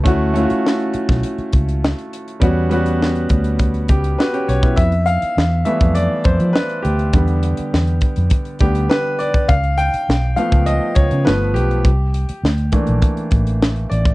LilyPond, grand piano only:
<<
  \new Staff \with { instrumentName = "Grand piano" } { \time 4/4 \key e \dorian \tempo 4 = 102 <a cis' e' fis'>8 <a cis' e' f' fis'>4. r2 | <g b cis' fis'>8 <g b cis' fis'>4. r8 g'8 b'8 cis''8 | \key f \lydian e''8 f''4 e''8 d''8 c''8 b'8 g'8~ | g'4. r4 g'8 b'8 d''8 |
eis''8 g''4 eis''8 dis''8 cis''8 b'8 g'8~ | g'4. r2 d''8 | }
  \new Staff \with { instrumentName = "Grand piano" } { \time 4/4 \key e \dorian r1 | r2. fis'16 <cis' g'>8 <b e'>16~ | \key f \lydian <b e'>16 r4 r16 <e g a b>2~ <e g a b>8 | <d g b>8 r2 <d g b>8 r4 |
r4. <eis a b>8 r4 <f a b>4 | r4. <e a bes d'>2~ <e a bes d'>8 | }
>>